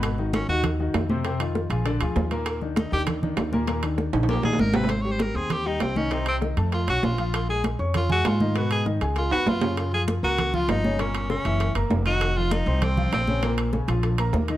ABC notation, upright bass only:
X:1
M:4/4
L:1/8
Q:1/4=197
K:Ablyd
V:1 name="Upright bass" clef=bass
A,,,3 E,,3 F,,2- | F,,3 B,,,2 D,, E,,2- | E,,3 E,,3 E,,2- | E,,3 B,,,2 B,,, A,,,2- |
[K:Ab] A,,,3 E,,3 C,,2- | C,,3 F,,2 _C,, B,,,2- | B,,,3 F,,3 A,,2- | A,,3 D,,2 E,, _G,,2- |
_G,,3 D,,3 =G,,,2- | G,,,3 _G,,,2 G,,, F,,,2- | F,,,3 C,,3 B,,,2- | B,,,3 B,,,3 E,,2 |]